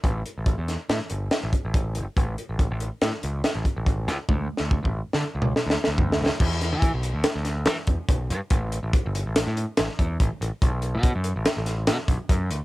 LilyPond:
<<
  \new Staff \with { instrumentName = "Picked electric bass" } { \clef bass \time 5/4 \key a \mixolydian \tempo 4 = 142 a,,8 r16 a,,8 e,8 r16 a,16 r16 g,,8 r16 a,,16 r16 a,,8. g,,16 r16 | a,,8 r16 a,,8 a,,8 r16 a,16 r16 cis,8 r16 a,,16 r16 a,,8. cis,16 r16 | d,8 r16 d,8 a,,8 r16 d16 r16 cis,8 r16 d,16 r16 d,8. cis,16 r16 | e,8. e8 b,,8 d,16 r16 d,8. e16 r16 e,16 r16 b,,8 g,16 r16 |
a,,8. a,,16 r16 g,,8 a,,8 a,8 r16 a,,16 r16 e,8 a,,16 r16 a,,16 r16 | b,,8. b,8 fis,8 a,,16 r16 a,,8. b,16 r16 b,,16 r16 fis,8 d,16 r16 | }
  \new DrumStaff \with { instrumentName = "Drums" } \drummode { \time 5/4 <hh bd>8 hh8 <hh bd>8 <hh sn>8 <hh sn>8 hh8 <hh sn>8 <hh bd>8 <hh bd>8 hh8 | <hh bd>8 hh8 <hh bd>8 hh8 <hh sn>8 hh8 <hh sn>8 <hh bd>8 <hh bd>8 <hh sn>8 | \tuplet 3/2 { <bd tommh>8 r8 sn8 bd8 bd8 r8 sn8 r8 toml8 sn8 sn8 sn8 <bd tomfh>8 sn8 sn8 } | <cymc bd>8 <hh sn>8 <hh bd>8 hh8 <hh sn>8 <hh sn>8 <hh sn>8 <hh bd>8 <hh bd>8 hh8 |
<hh bd>8 hh8 <hh bd>8 hh8 <hh sn>8 hh8 <hh sn>8 <hh bd>8 <hh bd>8 hh8 | <hh bd>8 hh8 <hh bd>8 hh8 <hh sn>8 <hh sn>8 <hh sn>8 <hh bd>8 <hh bd>8 hh8 | }
>>